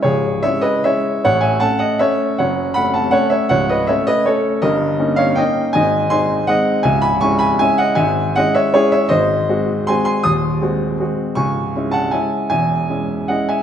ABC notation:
X:1
M:3/4
L:1/8
Q:1/4=158
K:C#m
V:1 name="Grand piano"
[Gc]2 [ce] [Bd] [ce]2 | [cf] [eg] [fa] [df] [ce]2 | [cf]2 [fb] [fa] [cf] [ce] | [cf] [Bd] [ce] [Bd] [Ac]2 |
[^Ad]3 [c^e] [d=g]2 | [dg]2 [g^b]2 [df]2 | [eg] [gb] [gc'] [gb] [eg] [df] | [eg]2 [df] [ce] [Gc] [ce] |
[^Bd]4 [g^b] [gb] | [^bd']6 | [gc']3 [fa] [eg]2 | [eg]4 [df] [eg] |]
V:2 name="Grand piano"
[C,,,C,,]2 [G,CE]2 [G,CE]2 | [A,,,A,,]2 [A,C]2 [A,C]2 | [F,,,F,,]2 [A,C]2 [A,C]2 | [C,,,C,,]2 [A,C]2 [A,C]2 |
[=G,,,=G,,]2 [^A,CD]2 [A,CD]2 | [G,,,G,,]2 [G,^B,D]2 [G,B,D]2 | [C,,,C,,]2 [G,CE]2 [G,CE]2 | [G,,,G,,]2 [G,CE]2 [G,CE]2 |
[G,,,G,,]2 [G,^B,F]2 [G,B,F]2 | [D,,,D,,]2 [G,^B,F]2 [G,B,F]2 | [C,,,C,,]2 [G,CE]2 [G,CE]2 | [E,,,E,,]2 [G,CE]2 [G,CE]2 |]